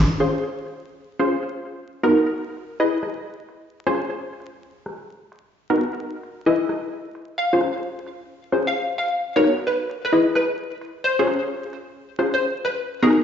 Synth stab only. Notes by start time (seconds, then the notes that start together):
0.20 C#4 F4 G#4 C5
1.19 C#4 F4 G#4 C5
2.03 B3 D#4 F#4 A#4
2.80 E4 G#4 B4 D#5
3.86 C#4 F4 G#4 C5
5.70 B3 D#4 F#4 A#4
6.46 E4 G#4 B4 D#5
7.53 C#4 F4 G#4 C5
8.52 C#4 F4 G#4 C5
9.36 B3 D#4 F#4 A#4
10.13 E4 G#4 B4 D#5
11.19 C#4 F4 G#4 C5
12.19 C#4 F4 G#4 C5
13.02 B3 D#4 F#4 A#4